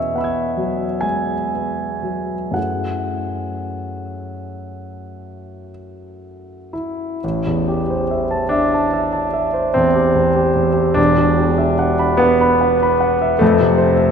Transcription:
Already playing: E2 B2 B3 C#4 C#5 D#5 E5
0.15 B3 F#5 B5
0.21 E6 G#6
0.57 F#3
1.01 G#3 G#5
1.54 B3
2.03 F#3
2.51 F#2 F#3 A3 E4 G#4 F#5
6.73 E4
7.24 A1
7.47 E2
7.68 G4
7.90 C5
8.11 E5
8.31 A5
8.49 D4 E5
8.74 A5
8.93 E5
9.13 A5
9.34 E5
9.54 C5
9.74 E2 C4
9.95 G4
10.15 E2
10.36 G4
10.55 E2
10.74 G4
10.94 E1 E2 D4
11.17 B2
11.38 G4
11.58 E5
11.79 F#5
11.99 B5
12.17 B3 F#5
12.41 B5
12.61 F#5
12.83 B5
13.01 F#5
13.22 E5
13.39 F2 A3
13.61 C3
13.78 C5
13.97 E5

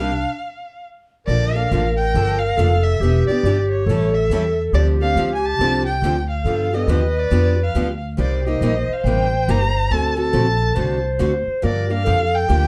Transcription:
Already playing: C2 D4 F5
0.00 G4
1.27 A#1 D3 F3 A#3 D4 A4 A#4 D5
1.55 A#3 D4 A4 F5
1.71 A1 D3 F3 A#3 D4 A4
1.97 G5
2.14 G1 D3 F3 A#3 D4 A4
2.39 F5
2.57 F1 D3 F3 A#3 D4 A4
2.84 E5
3.00 E1 E3 B3 D4 G4
3.27 D4 G4 D5, muted upright bass stroke
3.31 B3
3.43 G1 E3 B3 D4 G4
3.71 C#5
3.86 A1 E3 G3 C#4 E4 A4
4.14 E5
4.30 E2 E3 G3 C#4 E4 A4
4.73 D2 D3 F3 C4 D4 G4 A4 D5
5.01 C4 D4 A4 F5
5.16 C#2 D3 F3 C4 D4 A4
5.35 G#5
5.45 A5
5.59 C2 D3 F3 C4 D4 A4
5.87 G5
6.02 D2 D3 F3 C4 D4 A4
6.30 F5
6.45 G2 D3 F3 B3 D4 G4 A4
6.73 B3 D4 G4 D#5
6.87 D#2 D3 F3 B3 D4 G4 B4
7.20 D5
7.31 F2 D3 F3 B3 D4 G4
7.63 F5
7.75 D2 D3 F3 B3 D4 G4
8.17 C2 C3 G3 A#3 D#4 G4 C5 D5
8.46 A#3 D#4 G4 D#5
8.61 A#1 C3 G3 A#3 D#4 G4
8.89 muted upright bass stroke
8.93 F5
9.04 A1 C3 G3 A#3 D#4 G4 G5
9.48 G1 C3 G3 A#3 D#4 G4 A#5
9.90 D2 D3 A3 C4 F#4 A4 A5
10.16 C4 F#4 A4 A5
10.33 A#1 D3 A3 C4 F#4 A4
10.75 C2 D3 A3 C4 F#4 A4 C5
11.19 D2 D3 A3 C4 F#4 A4
11.47 muted upright bass stroke
11.62 G2 D3 F3 A#3 D4 G4 A#4 D5
11.90 A#3 D4 G4 F5
12.05 F2 D3 F3 A#3 D4 G4 A4
12.35 G5
12.49 D2 D3 F3 A#3 D4 G4

